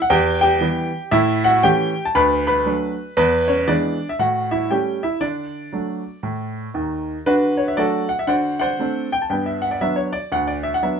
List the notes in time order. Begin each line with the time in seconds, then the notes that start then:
0.02 F#5
0.10 E2 G4 G5
0.41 G4 G5
0.61 E3 G3 B3
1.11 A2 E4 E5
1.44 F#4 F#5
1.63 E3 A3 C#4 G4 G5
2.05 A5
2.15 D2 B4 B5
2.47 B4 B5
2.65 F#3 A3 D4
3.17 E2 B3 B4
3.48 C#4 C#5
3.68 E3 G#3 B3 D4 D5
4.09 E5
4.19 A2 F#4 F#5
4.51 E4 E5
4.70 G3 A3 C#4 G4 G5
5.03 E4 E5
5.21 D3 D4 D5
5.72 F#3 A3 D4
6.23 A2
6.74 D#2 D#3
7.26 D3 D4 F#4 B4
7.57 C#5
7.68 E5
7.77 F#3 A3 D4 F#4 A4 D5
8.09 F#5
8.19 E5
8.27 D3 F#4 C5 D5 F#5
8.59 C5 D5 F#5
8.79 A3 C4 D4
9.12 G5
9.22 A5
9.30 G2 B3 G5
9.46 E5
9.62 F#5
9.71 D5
9.81 F#3 B3 D4 E5
9.96 C#5
10.13 D5
10.32 D2 F#5
10.47 D5
10.63 E5
10.74 F#5
10.83 F#3 B3 D4 E5